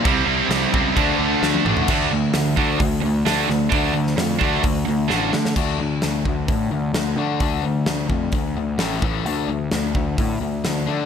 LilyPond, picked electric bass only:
\new Staff \with { instrumentName = "Picked electric bass" } { \clef bass \time 4/4 \key d \minor \tempo 4 = 130 c,8 c,8 c,8 cis,8 d,8 d,8 d,8 a,,8 | d,8 d,8 d,8 d,8 d,8 d,8 d,8 d,8 | d,8 d,8 f,8 d,8 d,8 d,8 a,,8 d8 | d,8 d,8 d,8 d,8 a,8 d,8 d,8 d8 |
d,8 d,8 d,8 f,8 d,8 d,8 a,,8 a,,8 | d,8 d,8 d,8 d,8 a,8 d,8 d,8 d8 | }